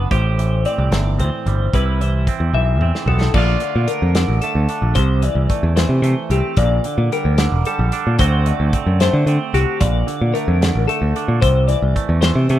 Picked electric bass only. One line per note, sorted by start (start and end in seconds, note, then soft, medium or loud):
0.11 0.64 A1 medium
0.78 0.89 C2 medium
0.91 1.20 G1 loud
1.19 1.29 D2 medium
1.46 1.67 G1 medium
1.73 2.26 C2 medium
2.40 2.51 E2 medium
2.53 2.80 B1 loud
2.80 2.91 E2 medium
3.06 3.28 B1 medium
3.34 3.55 A#1 medium
3.76 3.86 A#2 medium
4.02 4.23 F2 medium
4.28 4.39 A1 medium
4.55 4.66 D2 medium
4.82 4.93 A#1 medium
4.96 5.28 C2 loud
5.35 5.46 C2 medium
5.63 5.84 E2 medium
5.89 6.00 C3 medium
6.02 6.13 C3 medium
6.30 6.41 C2 medium
6.57 6.78 A#1 loud
6.98 7.08 A#2 medium
7.25 7.46 D2 medium
7.52 7.63 E1 medium
7.79 7.90 A#1 medium
8.07 8.17 A#2 medium
8.19 8.51 D2 loud
8.60 8.70 D2 medium
8.87 9.08 F#2 medium
9.13 9.24 D3 medium
9.26 9.37 D3 medium
9.54 9.64 C2 medium
9.81 10.02 A#1 medium
10.21 10.32 A#2 medium
10.48 10.69 F2 medium
10.75 10.86 A1 medium
11.02 11.12 D2 medium
11.28 11.39 A#2 medium
11.42 11.74 C2 medium
11.82 11.93 C2 medium
12.09 12.30 E2 medium
12.35 12.46 C3 medium
12.50 12.59 C3 loud